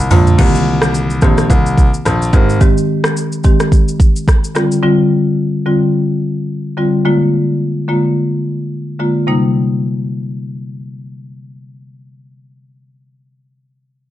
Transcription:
0.00 shaker
0.11 grand piano A#1, marimba D3 G#3 A#3 F4, floor tom, open hi-hat, shaker
0.27 floor tom, shaker
0.38 grand piano C2, marimba D#3 A#3 C4 G4, kick, crash, shaker
0.55 shaker
0.82 cross-stick, shaker
0.95 shaker
1.10 shaker
1.21 grand piano A#1, marimba D#3 A#3 C4 G4, kick, cross-stick, shaker
1.38 cross-stick, shaker
1.50 grand piano C2, kick, shaker
1.66 shaker
1.78 kick, shaker
1.94 shaker
2.05 grand piano A#1, cross-stick, shaker
2.22 shaker
2.33 grand piano G#1, marimba D#3 G#3 C4 G4, kick, shaker
2.49 shaker
2.61 marimba D#3 G#3 C4 G4, kick, shaker
2.78 shaker
3.04 cross-stick, shaker
3.17 shaker
3.32 shaker
3.44 marimba D#3 G#3 C4 G4, kick, shaker
3.60 cross-stick, shaker
3.72 kick, shaker
3.88 shaker
4.00 kick, shaker
4.16 shaker
4.28 kick, cross-stick, shaker
4.44 shaker
4.55 marimba D3 G3 C4 F4, cross-stick, shaker
4.72 shaker
4.83 marimba D3 G3 C4 F4
5.66 marimba D3 G3 C4 F4
6.77 marimba D3 G3 C4 F4
7.05 marimba D3 G#3 A#3 F4
7.88 marimba D3 G#3 A#3 F4
8.99 marimba D3 G#3 A#3 F4
9.27 marimba C3 G3 A#3 D#4

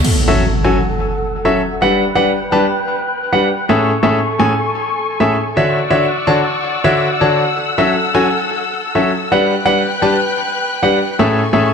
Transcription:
0.04 string section A4 F#5 E6, crash, impact
0.28 grand piano F#3 C#4 F#4 A4 E5
0.64 grand piano F#3 C#4 F#4 A4 G#5
1.45 grand piano F#3 C#4 F#4 A4 E5
1.82 grand piano G3 D4 G4 B4 F#5
1.92 string section B4 G5 F#6
2.15 grand piano G3 D4 G4 B4 F#5
2.52 grand piano G3 D4 G4 B4 A5
3.33 grand piano G3 D4 G4 B4 F#5
3.69 grand piano A2 C#4 G#4 A4 E5
3.79 string section A4 G#5 C#6
4.03 grand piano A2 C#4 G#4 A4 E5
4.39 grand piano A2 C#4 G#4 A4 G#5
5.20 grand piano A2 C#4 G#4 A4 E5
5.57 grand piano D3 D4 F#4 C#5 E5
5.67 string section D5 F#5 C#6 E6
5.90 grand piano D3 D4 F#4 C#5 E5
6.27 grand piano D3 D4 F#4 C#5 A5
6.84 grand piano D3 D4 F#4 C#5 E5
7.21 grand piano D3 D4 F#4 C#5 A5
7.55 string section A4
7.78 grand piano F#3 C#4 F#4 A4 E5
8.15 grand piano F#3 C#4 F#4 A4 G#5
8.95 grand piano F#3 C#4 F#4 A4 E5
9.32 grand piano G3 D4 G4 B4 F#5
9.42 string section B4 G5 F#6
9.65 grand piano G3 D4 G4 B4 F#5
10.02 grand piano G3 D4 G4 B4 A5
10.83 grand piano G3 D4 G4 B4 F#5
11.19 grand piano A2 C#4 G#4 A4 E5
11.30 string section A4 G#5 C#6
11.53 grand piano A2 C#4 G#4 A4 E5

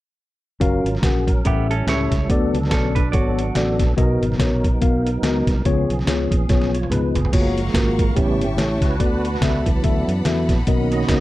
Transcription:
0.60 fingered electric bass F#1, tonewheel organ F#3 C#4 F4 A#4, tine electric piano C#4 F#4 A#4 F5, kick, closed hi-hat
0.84 fingered electric bass G#1, closed hi-hat
0.95 snare
1.02 fingered electric bass A#1, tine electric piano C#4 F#4 A#4 F#5, tonewheel organ G#4, kick, snare, closed hi-hat
1.27 tonewheel organ C#4 A#4, kick, closed hi-hat
1.45 fingered electric bass A1, tine electric piano A2 C#4 G4 A4 E5, tonewheel organ G3 B3 E4 A4, clean electric guitar B3 G4, kick, closed hi-hat
1.50 tonewheel organ C#4
1.71 clean electric guitar C#4 A4, closed hi-hat
1.87 fingered electric bass C#2, tine electric piano C#4 G4 A4 E5, clean electric guitar E4 C#5, snare, closed hi-hat
2.11 fingered electric bass C#2, kick, snare, closed hi-hat
2.29 fingered electric bass D2, tine electric piano D3 B3 F#4 A4 D5, tonewheel organ F#3 B3 D4 A4, kick, closed hi-hat
2.54 fingered electric bass C#2, closed hi-hat
2.63 snare
2.71 fingered electric bass B1, tine electric piano B3 F#4 A4 D5, clean electric guitar C#4 A4, kick, snare, closed hi-hat
2.95 clean electric guitar D4 B4, kick, closed hi-hat
3.12 fingered electric bass G#1, tine electric piano B3 F#4 A4 C#5, clean electric guitar F#4 D5, kick, closed hi-hat
3.39 closed hi-hat
3.55 fingered electric bass A1, tine electric piano B3 F#4 A4 D5, snare, closed hi-hat
3.79 fingered electric bass A#1, kick, snare, closed hi-hat
3.97 fingered electric bass B1, tine electric piano B2 B3 F#4 A#4 D#5, tonewheel organ F#3 B3 D#4 A4, kick, closed hi-hat
4.04 tonewheel organ A#4
4.21 fingered electric bass G#1, closed hi-hat
4.32 snare
4.38 fingered electric bass A#1, tine electric piano B3 F#4 A#4 C#5, kick, snare, closed hi-hat
4.64 kick, closed hi-hat
4.81 fingered electric bass B1, tine electric piano B3 F#4 A#4 F5, kick, closed hi-hat
5.07 closed hi-hat
5.22 fingered electric bass C#2, tine electric piano B3 F#4 A#4 D#5, snare, closed hi-hat
5.47 fingered electric bass C2, kick, snare, closed hi-hat
5.65 fingered electric bass C#2, tine electric piano C#3 B3 F4 G#4 C#5, tonewheel organ F3 B3 C#4 G#4, kick, closed hi-hat
5.90 fingered electric bass B1, closed hi-hat
5.99 snare
6.07 fingered electric bass C#2, tine electric piano B3 F4 G#4 C#5, snare, closed hi-hat
6.31 fingered electric bass A#1, kick, closed hi-hat
6.49 fingered electric bass B1, tine electric piano B3 F4 G#4 C#5, kick, snare, closed hi-hat
6.62 snare
6.74 tonewheel organ F4 C#5, closed hi-hat
6.83 high tom
6.90 fingered electric bass C#2, tine electric piano B3 F4 G#4 B4, tonewheel organ D#4 B4, closed hi-hat, mid tom
7.15 fingered electric bass F1, tonewheel organ B3 G#4, closed hi-hat, floor tom
7.25 floor tom
7.32 fingered electric bass F#1, tonewheel organ F3 G#3 A#3, tine electric piano A#3 F4 F#4 C#5, string section F5 F#5 A#5 C#6, kick, closed hi-hat, crash
7.58 closed hi-hat
7.67 snare
7.74 fingered electric bass G#1, tine electric piano A#3 F4 F#4 A#4, kick, snare, closed hi-hat
7.99 tonewheel organ A#4, kick, closed hi-hat
8.15 fingered electric bass A1, tine electric piano A2 A3 E4 G4 C#5, tonewheel organ C#3 G3 B3 C#4 E4 G4, string section E5 G5 A5 C#6, kick, closed hi-hat
8.39 fingered electric bass G1, closed hi-hat
8.57 fingered electric bass A1, tine electric piano A3 E4 G4 C#5, tonewheel organ A4, snare, closed hi-hat
8.81 fingered electric bass C#2, tonewheel organ F#4 B4, kick, snare, closed hi-hat
8.99 fingered electric bass D2, tine electric piano D3 B3 F#4 A4 D5, string section D5 F#5 B5, kick, closed hi-hat
9.25 closed hi-hat
9.34 snare
9.41 fingered electric bass C#2, tine electric piano B3 F#4 A4 E5, kick, snare, closed hi-hat
9.66 tonewheel organ E3 F#3 B3, kick, closed hi-hat
9.83 fingered electric bass D2, tine electric piano B3 F#4 A4 E5, kick, closed hi-hat
10.08 fingered electric bass F#2, closed hi-hat
10.25 fingered electric bass E2, tine electric piano B3 F#4 A4 E5, snare, closed hi-hat
10.49 fingered electric bass A#1, kick, snare, closed hi-hat
10.66 fingered electric bass B1, tine electric piano B2 B3 F#4 A#4 D#5, tonewheel organ D#3 A#3 C#4, string section D#5 A#5, kick, closed hi-hat
10.92 tonewheel organ F#4 D#5, closed hi-hat
11.01 snare
11.08 fingered electric bass C#2, tine electric piano B3 F#4 A#4 D#5, kick, snare, closed hi-hat

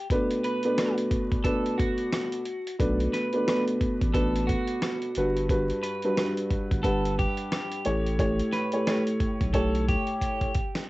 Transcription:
0.10 upright piano B2 A3 D4 B4, kick, closed hi-hat
0.31 closed hi-hat
0.44 clean electric guitar B4, closed hi-hat
0.63 upright piano B2 A3 D4 B4, closed hi-hat
0.77 upright piano B2 A3 D4 B4, cross-stick, snare, closed hi-hat
0.98 closed hi-hat
1.11 kick, closed hi-hat
1.32 kick, closed hi-hat
1.44 upright piano B2 A3 D4 B4, clean electric guitar A4, kick, closed hi-hat
1.66 closed hi-hat
1.78 clean electric guitar F#4, kick, closed hi-hat
1.98 closed hi-hat
2.12 cross-stick, snare, closed hi-hat
2.32 closed hi-hat
2.45 closed hi-hat
2.67 closed hi-hat
2.79 sub bass B1, upright piano B2 A3 D4 B4, kick, closed hi-hat
3.00 closed hi-hat
3.13 clean electric guitar B4, snare, closed hi-hat
3.33 upright piano B2 A3 D4 B4, closed hi-hat
3.47 upright piano B2 A3 D4 B4, cross-stick, snare, closed hi-hat
3.68 closed hi-hat
3.81 kick, closed hi-hat
4.01 sub bass A1, kick, closed hi-hat
4.14 upright piano B2 A3 D4 B4, clean electric guitar A4, kick, closed hi-hat
4.36 closed hi-hat
4.47 clean electric guitar F#4, kick, closed hi-hat
4.67 closed hi-hat
4.82 cross-stick, snare, closed hi-hat
5.02 closed hi-hat
5.15 sub bass G1, upright piano G2 G3 F#4 B4, closed hi-hat
5.37 closed hi-hat
5.49 upright piano G2 G3 F#4 B4, kick, closed hi-hat
5.70 closed hi-hat
5.83 clean electric guitar B4, closed hi-hat
6.02 upright piano G2 G3 F#4 B4, closed hi-hat
6.16 upright piano G2 G3 F#4 B4, cross-stick, snare, closed hi-hat
6.37 closed hi-hat
6.51 kick, closed hi-hat
6.71 sub bass G1, kick, closed hi-hat
6.83 upright piano G2 G3 B4 F#5, clean electric guitar A4, kick, closed hi-hat
7.05 closed hi-hat
7.19 clean electric guitar G4, kick, closed hi-hat
7.37 closed hi-hat
7.52 cross-stick, snare, closed hi-hat
7.72 closed hi-hat
7.85 sub bass A1, upright piano A2 A3 G4 C#5, closed hi-hat
8.06 closed hi-hat
8.19 upright piano A2 A3 G4 C#5, kick, closed hi-hat
8.39 closed hi-hat
8.53 clean electric guitar B4, snare, closed hi-hat
8.72 upright piano A2 A3 G4 C#5, closed hi-hat
8.87 upright piano A2 A3 G4 C#5, cross-stick, snare, closed hi-hat
9.07 closed hi-hat
9.20 kick, closed hi-hat
9.41 sub bass B1, kick, closed hi-hat
9.54 upright piano A2 A3 G4 C#5, clean electric guitar A4, kick, closed hi-hat
9.75 closed hi-hat
9.88 clean electric guitar G4, kick, closed hi-hat
10.07 closed hi-hat
10.21 kick, closed hi-hat
10.41 kick, closed hi-hat
10.54 kick, closed hi-hat
10.75 snare, closed hi-hat

